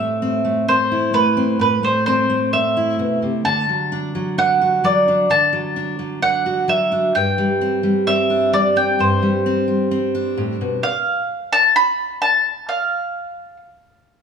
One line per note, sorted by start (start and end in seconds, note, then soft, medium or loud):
0.00 1.58 A2 medium
0.00 0.44 A3 medium
0.00 0.22 C4 soft
0.00 0.68 E5 medium
0.22 0.68 C4 soft
0.45 1.13 A3 soft
0.68 1.36 C4 soft
0.68 1.14 C5 medium
0.92 1.58 E4 soft
1.13 1.82 A3 medium
1.13 1.60 B4 medium
1.37 1.57 C4 soft
1.59 2.98 A2 medium
1.59 1.84 B4 medium
1.83 2.29 A3 medium
1.83 2.05 C5 medium
2.06 2.52 C4 soft
2.06 2.53 C5 medium
2.30 3.69 A3 medium
2.53 3.43 C4 soft
2.53 3.18 E5 medium
2.77 3.43 E4 soft
2.99 3.22 B2 soft
3.22 3.45 C3 soft
3.45 5.27 D3 medium
3.45 4.38 A5 medium
3.69 4.15 F#3 medium
3.92 4.38 D4 soft
4.15 4.83 F#3 medium
4.38 5.08 D4 medium
4.38 4.86 F#5 medium
4.61 5.27 F#4 soft
4.84 5.27 F#3 medium
4.84 5.32 D5 medium
5.08 5.76 D4 soft
5.30 7.12 D3 medium
5.30 6.22 A5 medium
5.53 5.98 F#3 medium
5.76 6.22 D4 soft
5.99 6.67 F#3 soft
6.22 6.91 D4 soft
6.22 6.70 F#5 medium
6.46 7.12 F#4 soft
6.68 7.11 F#3 medium
6.68 7.16 E5 medium
6.92 7.61 D4 soft
7.15 8.98 G2 medium
7.15 8.03 G5 medium
7.38 7.83 G3 medium
7.61 8.07 C4 soft
7.83 8.52 G3 medium
8.07 8.76 C4 medium
8.07 8.53 E5 medium
8.30 10.13 D4 soft
8.53 8.96 G3 medium
8.53 8.77 D5 medium
8.76 9.46 C4 soft
8.76 9.00 G5 medium
8.99 10.37 G2 medium
8.99 10.34 C5 medium
9.22 9.67 G3 medium
9.46 9.90 C4 medium
9.68 10.80 G3 soft
9.91 10.81 C4 medium
10.15 10.84 D4 medium
10.37 10.60 A2 medium
10.61 10.84 B2 soft
10.83 11.55 F5 medium
11.53 11.75 A5 medium
11.76 12.21 B5 loud
12.22 12.69 A5 medium
12.69 13.56 F5 medium